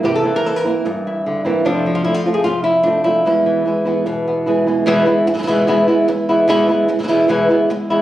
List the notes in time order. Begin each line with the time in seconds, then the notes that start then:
0.03 C3 E3 A#3 C4 E4 G4
0.15 A4
0.24 E3 A#3 C4 E4
0.36 A#4
0.44 E3 A#3 C4 E4 A4
0.56 A#4
0.65 A#3 C4 E4
0.85 G2, muted nylon-string guitar stroke
1.07 E4
1.26 D3
1.45 E3 A#3 C4 E4
1.65 F2 C3 F3 A3 C4 D4 F4
1.75 E4
1.86 F3
1.95 F4
2.04 F3 A3 C4 E4 F4
2.14 F4
2.26 F3 A3 C4 F4
2.34 G#4
2.44 C3 F4, muted nylon-string guitar stroke
2.64 E4
2.83 F3 A3 C4 D4 F4
3.04 F3 A3 C4 E4 F4
3.25 E2 B2 E3 G#3 B3 E4
3.46 E3
3.65 E3 G#3 B3 E4
3.85 E3 G#3 B3 E4
4.06 B2, muted nylon-string guitar stroke
4.28 B3
4.46 E3 G#3 B3 E4 G#4
4.67 E3 G#3 B3 E4
4.86 E2 B2 E3 G#3 B3 E4
5.06 E3 G#3 B3 E4
5.27 E3 G#3 B3 E4, muted nylon-string guitar stroke
5.34 B2 E3 G#3 B3 E4
5.38 B2 E3 G#3 B3 E4
5.43 B2 E3 G#3 B3 E4
5.47 E2 B2 E3 G#3 B3 E4
5.67 E2 B2 E3 G#3 B3 E4, muted nylon-string guitar stroke
5.87 E3 G#3 B3 E4
6.08 E3 G#3 B3 E4, muted nylon-string guitar stroke
6.29 E3 G#3 B3 E4
6.48 E2 B2 E3 G#3 B3 E4
6.68 E3 G#3 B3 E4
6.88 E3 G#3 B3 E4, muted nylon-string guitar stroke
6.99 B2 E3 G#3 B3 E4
7.03 B2 E3 G#3 B3 E4
7.08 E2 B2 E3 G#3 B3 E4
7.28 E2 B2 E3 G#3 B3 E4, muted nylon-string guitar stroke
7.49 E3 G#3 B3 E4
7.69 E3 G#3 B3 E4, muted nylon-string guitar stroke
7.90 E3 G#3 B3 E4